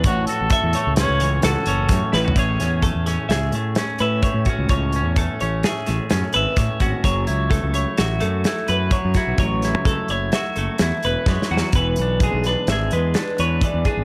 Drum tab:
HH |x--x--x--x--x--x--x--x--x-----|x--x--x--x--x--x--x--x--x--x--|x--x--x--x--x--x--x--x--x--x--|x--x--x--x--x--x--x--x--x--x--|
SD |------------o-----o-----o--o--|---o-----o--o-----o-----------|------------o--o--o-----o-----|------------o-----o--------o--|
FT |-----------------------------o|------------------------------|------------------------------|------------------------------|
BD |o-----o-----------------o-----|o-----o-----------------o--o--|o-----o-----------------o--o--|o-----o-----------------o--o--|

HH |x--x--x--x--x--x--x--x--------|x--x--x--x--x--x--x--x--x--x--|
SD |---o--------o-----o-----o-o-o-|---------o--o-----o-----------|
FT |------------------------------|------------------------------|
BD |o-----o-----------------o-----|o-----o-----------------o--o--|